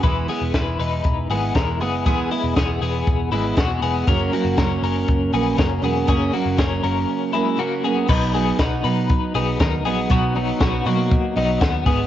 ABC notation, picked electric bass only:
X:1
M:4/4
L:1/16
Q:1/4=119
K:B
V:1 name="Picked electric bass" clef=bass
E,,,2 z E,,, E,,,2 E,,,2 E,,,2 G,,,2 E,,,2 F,,,2 | E,,,2 z E,,, E,,,2 E,,,2 E,,,2 G,,,2 E,,,2 E,,,2 | F,,,2 z F,,, F,,,2 F,,,2 F,,,2 A,,,2 F,,,2 E,,,2 | F,,,2 z F,,, z2 F,,,2 z8 |
B,,,4 B,,,2 B,,3 z B,,,2 D,,2 A,,,2 | B,,,4 B,,,2 B,,3 z B,,,2 D,,2 G,,,2 |]